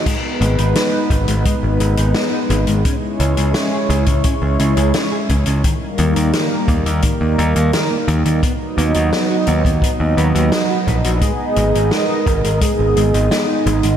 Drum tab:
CC |x---------------|----------------|----------------|----------------|
HH |x-xxx-xxx-xxx-xx|x-xxx-xxx-xxx-xx|x-xxx-xxx-xxx-xx|x-xxx-xxx-xxx-xx|
SD |----o-------o---|----o-------o---|----o-------o---|----o-------o---|
BD |o-----o-o-------|o------oo-----o-|o-----o-o-------|o------oo-----o-|

CC |----------------|
HH |x-xxx-xxx-xxx-xx|
SD |----o-------o---|
BD |o-----o-o-------|